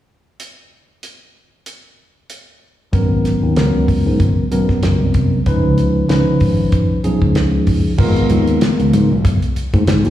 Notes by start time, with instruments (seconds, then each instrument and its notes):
0.40 closed hi-hat
1.03 closed hi-hat
1.66 closed hi-hat
2.30 closed hi-hat
2.93 fretless electric bass G#1, tine electric piano F#3 B3 C#4 A#4, kick, closed hi-hat
3.25 snare, closed hi-hat
3.42 fretless electric bass D#2
3.56 fretless electric bass C#2, tine electric piano F#3 B3 C#4 A#4, snare, closed hi-hat
3.74 fretless electric bass C#2
3.88 kick, open hi-hat
4.06 fretless electric bass G#2
4.20 fretless electric bass G#1, kick, closed hi-hat
4.51 fretless electric bass B1, tine electric piano F#3 B3 C#4 A#4, closed hi-hat
4.69 kick, snare
4.83 fretless electric bass F#1, snare, closed hi-hat
5.01 fretless electric bass C2
5.14 kick, closed hi-hat
5.46 fretless electric bass C#2, tine electric piano F3 C#4 D#4 B4, kick, closed hi-hat
5.64 fretless electric bass C#2
5.78 closed hi-hat
6.08 fretless electric bass C#2, tine electric piano F3 C#4 D#4 B4, snare, closed hi-hat
6.40 fretless electric bass G#1, kick, open hi-hat
6.72 kick, closed hi-hat
7.04 fretless electric bass B1, tine electric piano F3 C#4 D#4 G#4, closed hi-hat
7.22 fretless electric bass C#2, kick
7.35 snare, closed hi-hat
7.67 kick, open hi-hat
7.98 fretless electric bass G#1, tine electric piano G#3 B3 F4 A#4, kick, crash
8.16 closed hi-hat
8.30 fretless electric bass D#2, closed hi-hat, low conga
8.47 closed hi-hat
8.61 snare, closed hi-hat, high conga
8.80 fretless electric bass C#2, closed hi-hat
8.93 fretless electric bass G#2, closed hi-hat, low conga
9.11 fretless electric bass B1
9.25 kick, closed hi-hat
9.42 closed hi-hat
9.56 closed hi-hat
9.74 fretless electric bass G#2, kick, closed hi-hat, high conga
9.87 fretless electric bass G#2, snare, closed hi-hat, low conga
10.05 fretless electric bass D#2, closed hi-hat, high conga